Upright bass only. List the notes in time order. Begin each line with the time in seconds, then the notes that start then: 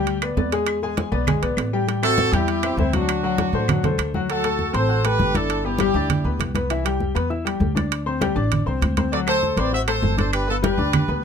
Already playing: D2
0.37 E2
1.12 B1
1.42 B1
1.57 A1
2.32 E2
2.77 D2
3.53 A1
3.83 C2
3.98 D2
4.74 A1
5.19 G1
5.94 D2
6.24 D2
6.39 C2
7.15 E2
7.60 D2
8.36 A1
8.66 C2
8.81 D2
9.57 A1
10.02 G1
10.78 D2
11.08 D2